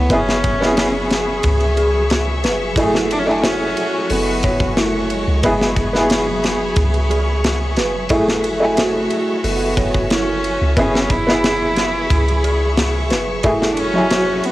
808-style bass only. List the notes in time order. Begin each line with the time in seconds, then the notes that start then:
0.10 F#1
1.44 C#2
2.44 F#1
4.10 F#1
5.28 C#2
5.44 F#1
6.77 C#2
7.78 F#1
9.44 F#1
10.61 C#2
10.77 F#1
12.10 C#2
13.11 F#1